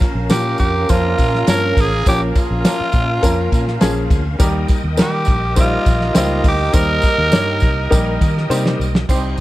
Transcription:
Already playing: horn section F3 A#3 C#4 A#4, tonewheel organ C#4 A#4 F5
0.00 kick, snare, ride, tambourine
0.15 fingered electric bass A#1
0.29 fingered electric bass A#2, grand piano F3 A#3 C#4 F4 A#4, tenor saxophone G4, snare, ride, tambourine
0.58 fingered electric bass F2, tenor saxophone G4, kick, ride, tambourine
0.89 fingered electric bass F2, grand piano F3 A#3 C#4 F4 C5, tenor saxophone F4, kick, ride, tambourine
1.18 fingered electric bass A#2, kick, ride, tambourine
1.35 snare
1.47 fingered electric bass G2, grand piano F3 A#3 C#4 F4 C#5, tenor saxophone A#4, snare, ride, tambourine
1.77 fingered electric bass A1, tenor saxophone G#4, kick, open hi-hat, ride, tambourine
2.06 fingered electric bass A#1, grand piano F3 A#3 C#4 F4 C#5, tenor saxophone G4, kick, hi-hat pedal, ride, tambourine
2.35 tenor saxophone F4, kick, snare, ride, tambourine
2.51 fingered electric bass A#1
2.65 grand piano F3 A#3 C#4 F4 A#4, snare, ride, tambourine
2.81 muted fingered electric bass stroke
2.92 fingered electric bass A#2, kick, ride, tambourine
3.22 fingered electric bass F2, grand piano F3 A#3 C#4 F4 A#4, kick, ride, tambourine
3.52 fingered electric bass A#2, kick, ride, tambourine
3.68 snare
3.81 fingered electric bass A#1, grand piano F3 A#3 C#4 F4 G#4, snare, ride, tambourine
4.10 fingered electric bass D2, kick, ride, tambourine
4.39 fingered electric bass D#2, grand piano G3 A#3 D#4 G4 A#4, tonewheel organ D#5 G5 D#6, kick, ride, tambourine
4.68 kick, ride, tambourine
4.84 fingered electric bass D#2
4.97 fingered electric bass D#3, grand piano G3 A#3 D#4 G4 A#4, snare, ride, tambourine
5.02 tenor saxophone G4
5.25 fingered electric bass A#1, kick, ride, tambourine
5.56 grand piano G3 A#3 D#4 G4 C5, horn section A#3 D#4 G4 D#5, kick, ride, tambourine
5.60 tenor saxophone F4
5.86 fingered electric bass A#1, kick, ride, tambourine
6.01 snare
6.14 fingered electric bass C#2, grand piano G3 A#3 D#4 G4 C5, tenor saxophone F4, snare, ride, tambourine
6.44 fingered electric bass D2, kick, open hi-hat, ride, tambourine
6.48 tenor saxophone G4
6.73 fingered electric bass D#2, grand piano G3 A#3 D#4 G4 C5, tenor saxophone A#4, kick, hi-hat pedal, ride, tambourine
7.02 kick, snare, ride, tambourine
7.18 fingered electric bass D#2
7.32 fingered electric bass G2, grand piano G3 A#3 D#4 G4 C#5, snare, ride, tambourine
7.60 fingered electric bass C2, kick, ride, tambourine
7.90 fingered electric bass A#1, grand piano G3 A#3 D#4 G4 A#4, kick, ride, tambourine
8.21 fingered electric bass D#3, kick, ride, tambourine
8.37 snare
8.49 fingered electric bass C3, grand piano G3 A#3 D#4 G4 C5, tambourine
8.66 snare
8.80 fingered electric bass B1, tambourine
8.95 snare
9.08 fingered electric bass C2, horn section G3 C4 D#4 C5, grand piano G3 C4 D#4 G4, tonewheel organ C5 D#5 G5 D#6, kick, crash, tambourine

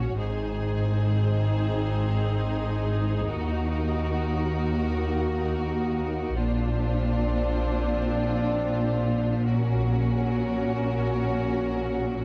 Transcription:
Already playing: double bass section A#1, cello section A#2, french horn section C#4 F#4, viola section C#4, violin section F#4 C#5
0.18 double bass section G#1, cello section G#2, french horn section C4 D#4, viola section D#4, violin section G#4 C5
3.28 cello section D#2, double bass section D#2, french horn section A#3 F#4, violin section F#4 A#4
6.36 double bass section A#1, cello section A#2, french horn section C4 D4, viola section D4, violin section F4 C5
9.48 viola section C#4, french horn section C#4 F#4, violin section F#4 A#4

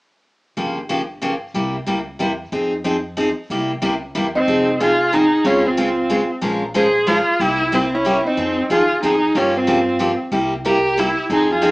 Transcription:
0.57 upright bass G1, steel-string acoustic guitar C#3 F3 A#3 F4 G4
0.89 steel-string acoustic guitar C#3 F3 A#3 F4 G4
1.22 steel-string acoustic guitar C#3 F3 A#3 F4 G4
1.54 upright bass C2, steel-string acoustic guitar C3 G3 A#3 E4 G4
1.86 upright bass C#2, steel-string acoustic guitar C3 G3 A#3 E4 G4
2.19 upright bass E2, steel-string acoustic guitar C3 G3 A#3 E4 G4
2.52 upright bass F2, steel-string acoustic guitar F3 C4 D#4 G#4
2.84 steel-string acoustic guitar F3 C4 D#4 G#4
3.17 steel-string acoustic guitar F3 C4 D#4 G#4
3.50 upright bass C2, steel-string acoustic guitar C3 G3 A#3 E4 G4
3.82 upright bass C#2, steel-string acoustic guitar C3 G3 A#3 E4 G4
4.15 upright bass E2, steel-string acoustic guitar C3 G3 A#3 E4 G4
4.35 viola C4, steel-string acoustic guitar D#4
4.47 upright bass F1, steel-string acoustic guitar F3 C4 D#4 G#4
4.80 steel-string acoustic guitar F3 C4 D#4 G#4, viola F4
5.13 steel-string acoustic guitar F3 C4 D#4 G#4, viola D#4
5.44 upright bass C#2, steel-string acoustic guitar C#3 G#3 C4 F4 G#4, viola C#4
5.65 viola C4, steel-string acoustic guitar F4
5.77 steel-string acoustic guitar C#3 G#3 C4 F4 G#4
6.10 steel-string acoustic guitar C#3 G#3 C4 F4 G#4
6.41 upright bass A#1, steel-string acoustic guitar F3 G#3 C#4 F4 A#4
6.74 steel-string acoustic guitar F3 G#3 C#4 F4 A#4 C5, viola G#4
7.07 steel-string acoustic guitar F3 G#3 C#4 F4 G#4 A#4, viola F4
7.40 upright bass C2, steel-string acoustic guitar C3 G3 A#3 E4 G4, viola E4
7.72 steel-string acoustic guitar C3 G3 A#3 E4 G4, viola C4
7.94 viola C#4, steel-string acoustic guitar E4
8.05 steel-string acoustic guitar C3 G3 A#3 E4 G4
8.27 viola C4, steel-string acoustic guitar D#4
8.37 upright bass F2, steel-string acoustic guitar F3 C4 D#4 G#4
8.70 upright bass D#2, steel-string acoustic guitar F3 C4 D#4 G#4, viola F4
9.03 upright bass F2, steel-string acoustic guitar F3 C4 D#4 G#4, viola D#4
9.35 upright bass G2, steel-string acoustic guitar C#3 F3 A#3 F4 G4, viola C#4
9.57 viola C4, steel-string acoustic guitar F4
9.67 steel-string acoustic guitar C#3 F3 A#3 F4 G4
9.99 steel-string acoustic guitar C#3 F3 A#3 F4 G4
10.32 upright bass C2, steel-string acoustic guitar C3 G3 A#3 E4 G4
10.65 steel-string acoustic guitar C3 G3 A#3 E4 G4 A#4, viola G4
10.97 steel-string acoustic guitar C3 G3 A#3 E4 G4, viola E4
11.29 upright bass F2, steel-string acoustic guitar F3 C4 D#4 G#4, viola D#4
11.52 viola F4, steel-string acoustic guitar G#4
11.62 steel-string acoustic guitar F3 C4 D#4 G#4

